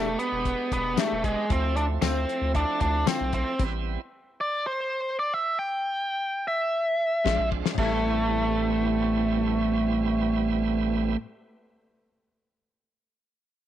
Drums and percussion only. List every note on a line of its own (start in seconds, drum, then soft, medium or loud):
0.19 closed hi-hat medium
0.45 kick medium
0.45 closed hi-hat medium
0.72 kick medium
0.72 closed hi-hat medium
0.97 snare loud
0.97 closed hi-hat medium
0.97 tambourine loud
1.24 kick medium
1.24 closed hi-hat medium
1.50 kick loud
1.50 closed hi-hat medium
1.77 closed hi-hat medium
2.02 snare medium
2.02 closed hi-hat medium
2.02 tambourine loud
2.29 closed hi-hat medium
2.55 kick medium
2.55 closed hi-hat medium
2.80 kick medium
2.80 closed hi-hat medium
3.07 snare loud
3.07 closed hi-hat medium
3.07 tambourine loud
3.33 kick medium
3.33 closed hi-hat medium
3.59 kick loud
3.59 closed hi-hat medium
3.59 crash medium
7.26 kick loud
7.26 snare medium
7.52 kick medium
7.66 snare medium
7.78 kick loud
7.78 crash medium